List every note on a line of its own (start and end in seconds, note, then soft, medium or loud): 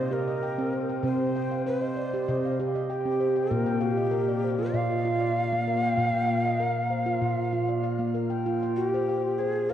0.00 0.75 C3 medium
0.00 0.14 C5 medium
0.00 0.26 D#5 medium
0.00 0.42 F5 medium
0.11 0.42 G4 medium
0.11 1.04 A#4 medium
0.28 0.73 D#5 medium
0.43 0.88 G5 medium
0.58 0.89 C4 medium
0.73 1.20 C5 medium
0.89 1.35 G5 medium
1.03 1.98 C3 medium
1.03 1.35 C4 medium
1.03 1.62 C5 medium
1.36 1.82 G5 medium
1.51 1.97 F5 soft
1.66 1.82 B4 medium
1.66 1.97 C5 medium
1.82 2.59 C5 medium
1.82 2.27 D#5 medium
1.97 2.44 D5 medium
2.14 2.44 G4 medium
2.28 3.23 C3 medium
2.28 2.74 D#5 medium
2.45 2.90 F5 medium
2.60 2.90 G4 medium
2.75 3.21 D#5 medium
2.90 3.53 G4 medium
2.90 3.35 G5 medium
3.05 3.36 C4 medium
3.20 3.67 C5 medium
3.36 3.65 G5 medium
3.51 4.46 A#2 medium
3.51 3.82 A#3 medium
3.51 3.83 A#4 medium
3.66 4.13 G5 medium
3.81 4.75 G4 medium
3.81 4.28 F5 medium
3.98 4.44 D#5 medium
4.11 4.43 A#4 medium
4.28 4.73 D5 medium
4.44 4.91 C5 medium
4.59 4.90 F4 medium
4.74 5.69 A#2 medium
4.74 5.19 D5 medium
4.74 7.83 F5 medium
4.91 5.37 D#5 medium
5.05 5.36 F4 medium
5.20 5.67 D5 medium
5.52 5.83 A#3 medium
5.67 6.14 A#4 medium
5.82 6.13 G5 medium
5.97 6.92 A#2 medium
5.97 6.29 A#3 medium
6.14 6.60 G5 medium
6.29 6.76 F5 medium
6.45 6.91 D#5 medium
6.60 6.91 A#4 medium
6.90 7.37 C5 medium
7.06 7.37 F4 medium
7.22 8.17 A#2 medium
7.53 7.84 F4 medium
7.69 8.15 D5 medium
7.84 8.31 F5 medium
7.99 8.30 A#3 medium
8.15 8.62 A#4 medium
8.30 8.61 G5 medium
8.46 8.77 F4 medium
8.63 8.77 G5 medium
8.76 8.87 F#4 medium
8.76 9.08 G5 medium
8.87 9.40 G4 medium
8.94 9.24 C5 medium
9.09 9.55 G5 soft
9.39 9.71 G#4 medium
9.39 9.69 C5 medium
9.70 9.73 A#4 medium
9.70 9.73 C5 medium
9.70 9.73 F5 medium